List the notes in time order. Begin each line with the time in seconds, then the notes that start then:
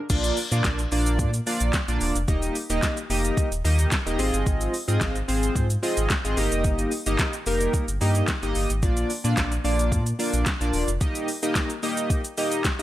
0.10 A#1 A#3 D4 F4 D5, kick, closed hi-hat, crash, shaker
0.24 closed hi-hat, shaker
0.37 open hi-hat, shaker
0.51 A#2 A#3 D4 F4 D5, closed hi-hat, shaker
0.64 A#1, kick, snare, clap, closed hi-hat, shaker
0.79 closed hi-hat, shaker
0.92 A#1 A#3 D4 F4 D5, open hi-hat, shaker
1.06 closed hi-hat, shaker
1.19 A#2, kick, closed hi-hat, shaker
1.34 closed hi-hat, shaker
1.46 A#3 D4 F4 D5, open hi-hat, shaker
1.60 A#1, closed hi-hat, shaker
1.73 kick, snare, clap, closed hi-hat, shaker
1.88 A#1 A#3 D4 F4 D5, closed hi-hat, shaker
2.01 D#1, open hi-hat, shaker
2.15 F1, closed hi-hat, shaker
2.28 D#1 A#3 D#4 G4 D#5, kick, closed hi-hat, shaker
2.42 closed hi-hat, shaker
2.55 open hi-hat, shaker
2.70 D#1 A#3 D#4 G4 D#5, closed hi-hat, shaker
2.83 kick, snare, clap, closed hi-hat, shaker
2.97 closed hi-hat, shaker
3.10 F1 A#3 D#4 G4 D#5, open hi-hat, shaker
3.25 closed hi-hat, shaker
3.37 kick, closed hi-hat, shaker
3.52 D#1, closed hi-hat, shaker
3.64 D#2 A#3 D#4 G4 D#5, open hi-hat, shaker
3.79 closed hi-hat, shaker
3.92 kick, snare, clap, closed hi-hat, shaker
4.06 D#1 A#3 D#4 G4 D#5, closed hi-hat, shaker
4.19 G#1 C4 F4 G#4 D#5, open hi-hat, shaker
4.33 G1, closed hi-hat, shaker
4.46 G#1, kick, closed hi-hat, shaker
4.61 closed hi-hat, shaker
4.74 open hi-hat, shaker
4.88 G#2 C4 F4 G#4 D#5, closed hi-hat, shaker
5.01 G#1, kick, snare, clap, closed hi-hat, shaker
5.16 closed hi-hat, shaker
5.28 G#1 C4 F4 G#4 C5, open hi-hat, shaker
5.43 closed hi-hat, shaker
5.56 G#2, kick, closed hi-hat, shaker
5.70 closed hi-hat, shaker
5.82 C4 F4 G#4 D#5, open hi-hat, shaker
5.97 G#1, closed hi-hat, shaker
6.10 kick, snare, clap, closed hi-hat, shaker
6.24 G#1 C4 F4 G#4 D#5, closed hi-hat, shaker
6.37 G1 A#3 D#4 G4 D#5, open hi-hat, shaker
6.52 F1, closed hi-hat, shaker
6.64 G1, kick, closed hi-hat, shaker
6.79 closed hi-hat, shaker
6.91 open hi-hat, shaker
7.06 G1 A#3 D#4 G4 D#5, closed hi-hat, shaker
7.19 kick, snare, clap, closed hi-hat, shaker
7.33 closed hi-hat, shaker
7.46 F1 A#3 D#4 G4 A#4, open hi-hat, shaker
7.61 closed hi-hat, shaker
7.74 kick, closed hi-hat, shaker
7.88 G1, closed hi-hat, shaker
8.01 G2 A#3 D#4 G4 D#5, open hi-hat, shaker
8.15 closed hi-hat, shaker
8.28 kick, snare, clap, closed hi-hat, shaker
8.42 G1 A#3 D#4 G4 D#5, closed hi-hat, shaker
8.55 G1, open hi-hat, shaker
8.70 G#1, closed hi-hat, shaker
8.82 A#1 A#3 D4 F4 D5, kick, closed hi-hat, shaker
8.97 closed hi-hat, shaker
9.10 open hi-hat, shaker
9.24 A#2 A#3 D4 F4 D5, closed hi-hat, shaker
9.37 A#1, kick, snare, clap, closed hi-hat, shaker
9.52 closed hi-hat, shaker
9.64 A#1 A#3 D4 F4 D5, open hi-hat, shaker
9.79 closed hi-hat, shaker
9.92 A#2, kick, closed hi-hat, shaker
10.06 closed hi-hat, shaker
10.19 A#3 D4 F4 D5, open hi-hat, shaker
10.33 A#1, closed hi-hat, shaker
10.46 kick, snare, clap, closed hi-hat, shaker
10.61 A#1 A#3 D4 F4 D5, closed hi-hat, shaker
10.73 D#1, open hi-hat, shaker
10.88 F1, closed hi-hat, shaker
11.00 A#3 D#4 G4 D#5, kick, closed hi-hat, shaker
11.15 closed hi-hat, shaker
11.28 open hi-hat, shaker
11.42 A#3 D#4 G4 D#5, closed hi-hat, shaker
11.55 kick, snare, clap, closed hi-hat, shaker
11.70 closed hi-hat, shaker
11.83 A#3 D#4 G4 D#5, open hi-hat, shaker
11.97 closed hi-hat, shaker
12.10 kick, closed hi-hat, shaker
12.25 closed hi-hat, shaker
12.38 A#3 D#4 G4 D#5, open hi-hat, shaker
12.52 closed hi-hat, shaker
12.64 kick, snare, clap, closed hi-hat, shaker
12.79 A#3 D#4 G4 D#5